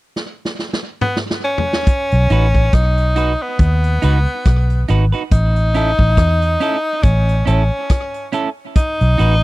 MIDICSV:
0, 0, Header, 1, 5, 480
1, 0, Start_track
1, 0, Tempo, 860832
1, 1043, Time_signature, 4, 2, 24, 8
1, 5260, End_track
2, 0, Start_track
2, 0, Title_t, "Clean electric guitar"
2, 0, Program_c, 0, 27
2, 1284, Note_on_c, 0, 63, 75
2, 1291, Note_on_c, 0, 66, 76
2, 1295, Note_on_c, 0, 71, 79
2, 1369, Note_off_c, 0, 63, 0
2, 1372, Note_off_c, 0, 66, 0
2, 1374, Note_off_c, 0, 71, 0
2, 1761, Note_on_c, 0, 63, 69
2, 1767, Note_on_c, 0, 66, 84
2, 1772, Note_on_c, 0, 71, 82
2, 1847, Note_off_c, 0, 63, 0
2, 1850, Note_off_c, 0, 66, 0
2, 1852, Note_off_c, 0, 71, 0
2, 2242, Note_on_c, 0, 63, 81
2, 2250, Note_on_c, 0, 66, 92
2, 2253, Note_on_c, 0, 71, 88
2, 2327, Note_off_c, 0, 63, 0
2, 2331, Note_off_c, 0, 66, 0
2, 2333, Note_off_c, 0, 71, 0
2, 2724, Note_on_c, 0, 63, 72
2, 2731, Note_on_c, 0, 66, 77
2, 2734, Note_on_c, 0, 71, 88
2, 2808, Note_off_c, 0, 63, 0
2, 2812, Note_off_c, 0, 66, 0
2, 2813, Note_off_c, 0, 71, 0
2, 2857, Note_on_c, 0, 71, 59
2, 2865, Note_on_c, 0, 66, 52
2, 2869, Note_on_c, 0, 63, 45
2, 2908, Note_off_c, 0, 71, 0
2, 2912, Note_off_c, 0, 66, 0
2, 2914, Note_off_c, 0, 63, 0
2, 3203, Note_on_c, 0, 61, 71
2, 3207, Note_on_c, 0, 64, 83
2, 3214, Note_on_c, 0, 69, 77
2, 3288, Note_off_c, 0, 61, 0
2, 3290, Note_off_c, 0, 64, 0
2, 3293, Note_off_c, 0, 69, 0
2, 3682, Note_on_c, 0, 61, 75
2, 3689, Note_on_c, 0, 64, 77
2, 3694, Note_on_c, 0, 69, 89
2, 3767, Note_off_c, 0, 61, 0
2, 3770, Note_off_c, 0, 64, 0
2, 3773, Note_off_c, 0, 69, 0
2, 4157, Note_on_c, 0, 61, 70
2, 4164, Note_on_c, 0, 64, 75
2, 4168, Note_on_c, 0, 69, 86
2, 4245, Note_off_c, 0, 61, 0
2, 4248, Note_off_c, 0, 64, 0
2, 4250, Note_off_c, 0, 69, 0
2, 4641, Note_on_c, 0, 61, 77
2, 4646, Note_on_c, 0, 64, 89
2, 4651, Note_on_c, 0, 69, 92
2, 4727, Note_off_c, 0, 61, 0
2, 4729, Note_off_c, 0, 64, 0
2, 4732, Note_off_c, 0, 69, 0
2, 5119, Note_on_c, 0, 63, 82
2, 5125, Note_on_c, 0, 66, 77
2, 5132, Note_on_c, 0, 71, 85
2, 5206, Note_off_c, 0, 63, 0
2, 5209, Note_off_c, 0, 66, 0
2, 5212, Note_off_c, 0, 71, 0
2, 5260, End_track
3, 0, Start_track
3, 0, Title_t, "Tenor saxophone"
3, 0, Program_c, 1, 66
3, 567, Note_on_c, 1, 59, 83
3, 656, Note_off_c, 1, 59, 0
3, 805, Note_on_c, 1, 61, 98
3, 1527, Note_on_c, 1, 63, 92
3, 1536, Note_off_c, 1, 61, 0
3, 1906, Note_on_c, 1, 59, 84
3, 1915, Note_off_c, 1, 63, 0
3, 2725, Note_off_c, 1, 59, 0
3, 2967, Note_on_c, 1, 63, 107
3, 3919, Note_on_c, 1, 61, 89
3, 3928, Note_off_c, 1, 63, 0
3, 4161, Note_off_c, 1, 61, 0
3, 4165, Note_on_c, 1, 61, 78
3, 4621, Note_off_c, 1, 61, 0
3, 4887, Note_on_c, 1, 63, 123
3, 5260, Note_off_c, 1, 63, 0
3, 5260, End_track
4, 0, Start_track
4, 0, Title_t, "Fingered electric bass"
4, 0, Program_c, 2, 33
4, 1185, Note_on_c, 2, 35, 87
4, 1275, Note_off_c, 2, 35, 0
4, 1286, Note_on_c, 2, 33, 90
4, 1500, Note_off_c, 2, 33, 0
4, 1526, Note_on_c, 2, 35, 87
4, 1863, Note_off_c, 2, 35, 0
4, 2007, Note_on_c, 2, 39, 84
4, 2220, Note_off_c, 2, 39, 0
4, 2249, Note_on_c, 2, 37, 77
4, 2370, Note_off_c, 2, 37, 0
4, 2488, Note_on_c, 2, 35, 75
4, 2701, Note_off_c, 2, 35, 0
4, 2730, Note_on_c, 2, 32, 85
4, 2850, Note_off_c, 2, 32, 0
4, 2966, Note_on_c, 2, 33, 96
4, 3303, Note_off_c, 2, 33, 0
4, 3341, Note_on_c, 2, 33, 81
4, 3445, Note_off_c, 2, 33, 0
4, 3445, Note_on_c, 2, 40, 84
4, 3659, Note_off_c, 2, 40, 0
4, 3925, Note_on_c, 2, 33, 90
4, 4139, Note_off_c, 2, 33, 0
4, 4166, Note_on_c, 2, 33, 76
4, 4288, Note_off_c, 2, 33, 0
4, 5025, Note_on_c, 2, 35, 80
4, 5114, Note_off_c, 2, 35, 0
4, 5128, Note_on_c, 2, 33, 92
4, 5260, Note_off_c, 2, 33, 0
4, 5260, End_track
5, 0, Start_track
5, 0, Title_t, "Drums"
5, 90, Note_on_c, 9, 38, 52
5, 146, Note_off_c, 9, 38, 0
5, 251, Note_on_c, 9, 38, 60
5, 307, Note_off_c, 9, 38, 0
5, 329, Note_on_c, 9, 38, 55
5, 385, Note_off_c, 9, 38, 0
5, 408, Note_on_c, 9, 38, 72
5, 464, Note_off_c, 9, 38, 0
5, 564, Note_on_c, 9, 45, 89
5, 620, Note_off_c, 9, 45, 0
5, 648, Note_on_c, 9, 38, 75
5, 704, Note_off_c, 9, 38, 0
5, 727, Note_on_c, 9, 38, 88
5, 783, Note_off_c, 9, 38, 0
5, 880, Note_on_c, 9, 43, 85
5, 936, Note_off_c, 9, 43, 0
5, 965, Note_on_c, 9, 38, 82
5, 1021, Note_off_c, 9, 38, 0
5, 1040, Note_on_c, 9, 42, 81
5, 1042, Note_on_c, 9, 36, 108
5, 1096, Note_off_c, 9, 42, 0
5, 1098, Note_off_c, 9, 36, 0
5, 1179, Note_on_c, 9, 42, 47
5, 1235, Note_off_c, 9, 42, 0
5, 1282, Note_on_c, 9, 42, 52
5, 1338, Note_off_c, 9, 42, 0
5, 1419, Note_on_c, 9, 36, 73
5, 1421, Note_on_c, 9, 42, 28
5, 1475, Note_off_c, 9, 36, 0
5, 1477, Note_off_c, 9, 42, 0
5, 1522, Note_on_c, 9, 42, 75
5, 1523, Note_on_c, 9, 36, 98
5, 1526, Note_on_c, 9, 37, 104
5, 1577, Note_off_c, 9, 42, 0
5, 1578, Note_off_c, 9, 36, 0
5, 1582, Note_off_c, 9, 37, 0
5, 1660, Note_on_c, 9, 42, 53
5, 1716, Note_off_c, 9, 42, 0
5, 1761, Note_on_c, 9, 42, 71
5, 1817, Note_off_c, 9, 42, 0
5, 2001, Note_on_c, 9, 42, 75
5, 2003, Note_on_c, 9, 36, 100
5, 2057, Note_off_c, 9, 42, 0
5, 2059, Note_off_c, 9, 36, 0
5, 2140, Note_on_c, 9, 42, 47
5, 2196, Note_off_c, 9, 42, 0
5, 2243, Note_on_c, 9, 42, 67
5, 2299, Note_off_c, 9, 42, 0
5, 2483, Note_on_c, 9, 42, 89
5, 2485, Note_on_c, 9, 36, 109
5, 2490, Note_on_c, 9, 37, 107
5, 2539, Note_off_c, 9, 42, 0
5, 2541, Note_off_c, 9, 36, 0
5, 2546, Note_off_c, 9, 37, 0
5, 2620, Note_on_c, 9, 42, 49
5, 2675, Note_off_c, 9, 42, 0
5, 2722, Note_on_c, 9, 42, 62
5, 2778, Note_off_c, 9, 42, 0
5, 2861, Note_on_c, 9, 42, 34
5, 2917, Note_off_c, 9, 42, 0
5, 2964, Note_on_c, 9, 36, 103
5, 2964, Note_on_c, 9, 42, 90
5, 3019, Note_off_c, 9, 36, 0
5, 3020, Note_off_c, 9, 42, 0
5, 3100, Note_on_c, 9, 42, 50
5, 3156, Note_off_c, 9, 42, 0
5, 3202, Note_on_c, 9, 42, 64
5, 3258, Note_off_c, 9, 42, 0
5, 3338, Note_on_c, 9, 36, 81
5, 3394, Note_off_c, 9, 36, 0
5, 3441, Note_on_c, 9, 42, 81
5, 3442, Note_on_c, 9, 36, 92
5, 3445, Note_on_c, 9, 37, 106
5, 3496, Note_off_c, 9, 42, 0
5, 3497, Note_off_c, 9, 36, 0
5, 3501, Note_off_c, 9, 37, 0
5, 3579, Note_on_c, 9, 42, 50
5, 3634, Note_off_c, 9, 42, 0
5, 3683, Note_on_c, 9, 42, 68
5, 3738, Note_off_c, 9, 42, 0
5, 3920, Note_on_c, 9, 42, 81
5, 3923, Note_on_c, 9, 36, 97
5, 3976, Note_off_c, 9, 42, 0
5, 3979, Note_off_c, 9, 36, 0
5, 4064, Note_on_c, 9, 42, 47
5, 4119, Note_off_c, 9, 42, 0
5, 4164, Note_on_c, 9, 42, 69
5, 4220, Note_off_c, 9, 42, 0
5, 4402, Note_on_c, 9, 42, 88
5, 4405, Note_on_c, 9, 36, 104
5, 4409, Note_on_c, 9, 37, 111
5, 4458, Note_off_c, 9, 42, 0
5, 4461, Note_off_c, 9, 36, 0
5, 4465, Note_off_c, 9, 37, 0
5, 4539, Note_on_c, 9, 42, 53
5, 4595, Note_off_c, 9, 42, 0
5, 4642, Note_on_c, 9, 42, 56
5, 4698, Note_off_c, 9, 42, 0
5, 4883, Note_on_c, 9, 36, 107
5, 4883, Note_on_c, 9, 42, 91
5, 4939, Note_off_c, 9, 36, 0
5, 4939, Note_off_c, 9, 42, 0
5, 5022, Note_on_c, 9, 42, 46
5, 5078, Note_off_c, 9, 42, 0
5, 5124, Note_on_c, 9, 42, 53
5, 5179, Note_off_c, 9, 42, 0
5, 5260, End_track
0, 0, End_of_file